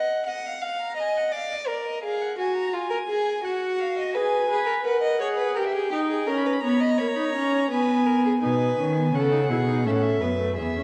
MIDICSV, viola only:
0, 0, Header, 1, 2, 480
1, 0, Start_track
1, 0, Key_signature, 5, "minor"
1, 0, Tempo, 703400
1, 1387, Time_signature, 3, 2, 24, 8
1, 2830, Tempo, 714286
1, 7324, End_track
2, 0, Start_track
2, 0, Title_t, "Viola"
2, 0, Program_c, 0, 41
2, 2826, Note_on_c, 0, 68, 78
2, 3049, Note_off_c, 0, 68, 0
2, 3066, Note_on_c, 0, 71, 81
2, 3300, Note_off_c, 0, 71, 0
2, 3306, Note_on_c, 0, 70, 78
2, 3540, Note_off_c, 0, 70, 0
2, 3546, Note_on_c, 0, 68, 85
2, 3785, Note_on_c, 0, 67, 81
2, 3796, Note_off_c, 0, 68, 0
2, 4023, Note_off_c, 0, 67, 0
2, 4026, Note_on_c, 0, 63, 76
2, 4258, Note_off_c, 0, 63, 0
2, 4266, Note_on_c, 0, 61, 81
2, 4500, Note_off_c, 0, 61, 0
2, 4506, Note_on_c, 0, 59, 79
2, 4742, Note_off_c, 0, 59, 0
2, 4748, Note_on_c, 0, 58, 74
2, 4796, Note_off_c, 0, 58, 0
2, 4859, Note_on_c, 0, 63, 77
2, 4981, Note_off_c, 0, 63, 0
2, 4985, Note_on_c, 0, 61, 82
2, 5220, Note_off_c, 0, 61, 0
2, 5224, Note_on_c, 0, 59, 80
2, 5698, Note_off_c, 0, 59, 0
2, 5707, Note_on_c, 0, 63, 55
2, 5951, Note_on_c, 0, 61, 52
2, 5961, Note_off_c, 0, 63, 0
2, 6068, Note_off_c, 0, 61, 0
2, 6072, Note_on_c, 0, 59, 56
2, 6184, Note_on_c, 0, 61, 59
2, 6194, Note_off_c, 0, 59, 0
2, 6302, Note_off_c, 0, 61, 0
2, 6306, Note_on_c, 0, 63, 60
2, 6355, Note_off_c, 0, 63, 0
2, 6430, Note_on_c, 0, 64, 65
2, 6478, Note_off_c, 0, 64, 0
2, 6545, Note_on_c, 0, 63, 61
2, 6664, Note_off_c, 0, 63, 0
2, 6671, Note_on_c, 0, 61, 64
2, 6904, Note_off_c, 0, 61, 0
2, 6912, Note_on_c, 0, 59, 56
2, 6959, Note_off_c, 0, 59, 0
2, 7032, Note_on_c, 0, 57, 51
2, 7148, Note_off_c, 0, 57, 0
2, 7158, Note_on_c, 0, 59, 50
2, 7271, Note_off_c, 0, 59, 0
2, 7279, Note_on_c, 0, 61, 45
2, 7324, Note_off_c, 0, 61, 0
2, 7324, End_track
0, 0, End_of_file